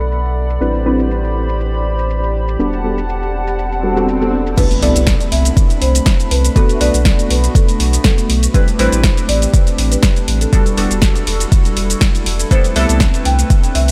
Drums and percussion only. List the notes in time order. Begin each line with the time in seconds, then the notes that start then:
0.00 shaker
0.12 shaker
0.25 shaker
0.50 shaker
0.61 shaker
0.75 shaker
0.99 shaker
1.11 shaker
1.24 shaker
1.49 shaker
1.61 shaker
1.74 shaker
1.99 shaker
2.10 shaker
2.24 shaker
2.48 shaker
2.60 shaker
2.73 shaker
2.98 shaker
3.09 shaker
3.23 shaker
3.47 shaker
3.59 shaker
3.72 shaker
3.97 shaker
4.09 shaker
4.22 shaker
4.47 shaker
4.58 kick, closed hi-hat, crash, shaker
4.71 closed hi-hat, shaker
4.82 open hi-hat
4.96 closed hi-hat, shaker
5.07 kick, snare, closed hi-hat, shaker
5.20 closed hi-hat, shaker
5.32 open hi-hat
5.45 closed hi-hat, shaker
5.57 kick, closed hi-hat, shaker
5.70 closed hi-hat, shaker
5.82 open hi-hat
5.95 closed hi-hat, shaker
6.06 kick, snare, closed hi-hat, shaker
6.20 closed hi-hat, shaker
6.31 open hi-hat
6.45 closed hi-hat, shaker
6.56 kick, closed hi-hat, shaker
6.69 closed hi-hat, shaker
6.81 open hi-hat
6.94 closed hi-hat, shaker
7.05 kick, snare, closed hi-hat, shaker
7.19 closed hi-hat, shaker
7.30 open hi-hat
7.44 closed hi-hat, shaker
7.55 kick, closed hi-hat, shaker
7.68 closed hi-hat, shaker
7.80 open hi-hat
7.93 closed hi-hat, shaker
8.04 kick, snare, closed hi-hat, shaker
8.18 closed hi-hat, shaker
8.30 open hi-hat
8.43 closed hi-hat, shaker
8.54 kick, closed hi-hat, shaker
8.68 closed hi-hat, shaker
8.79 open hi-hat
8.92 closed hi-hat, shaker
9.04 kick, snare, closed hi-hat, shaker
9.17 closed hi-hat, shaker
9.29 open hi-hat
9.42 closed hi-hat, shaker
9.54 kick, closed hi-hat, shaker
9.67 closed hi-hat, shaker
9.78 open hi-hat
9.92 closed hi-hat, shaker
10.03 kick, snare, closed hi-hat, shaker
10.16 closed hi-hat, shaker
10.28 open hi-hat
10.41 closed hi-hat, shaker
10.53 kick, closed hi-hat, shaker
10.66 closed hi-hat, shaker
10.78 open hi-hat
10.91 closed hi-hat, shaker
11.02 kick, snare, closed hi-hat, shaker
11.15 closed hi-hat, shaker
11.27 open hi-hat
11.40 closed hi-hat, shaker
11.52 kick, closed hi-hat, shaker
11.65 closed hi-hat, shaker
11.77 open hi-hat
11.90 closed hi-hat, shaker
12.01 kick, snare, closed hi-hat, shaker
12.15 closed hi-hat, shaker
12.26 open hi-hat
12.39 closed hi-hat, shaker
12.51 kick, closed hi-hat, shaker
12.64 closed hi-hat, shaker
12.76 open hi-hat
12.89 closed hi-hat, shaker
13.00 kick, snare, closed hi-hat, shaker
13.14 closed hi-hat, shaker
13.25 open hi-hat
13.39 closed hi-hat, shaker
13.50 kick, closed hi-hat, shaker
13.63 closed hi-hat, shaker
13.75 open hi-hat
13.88 closed hi-hat